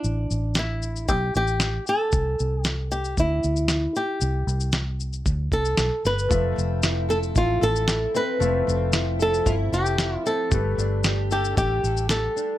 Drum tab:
SH |x-x-x-xxx-xxx-x-|x-x-x-xxx-xxx-x-|x-xxx-xxx-xxx-xx|x-x-x-xxx-xxx-x-|
SD |----o-------o---|----o-------o---|----o-------o-o-|----o-------o---|
BD |--------o-------|o-------o-------|--------o-o-----|o-------o-------|

SH |x-x-x-xxx-xxx-x-|x-x-x-xxx-xxx-x-|
SD |----o-------o---|----o-------o---|
BD |--------o-------|o-------o-------|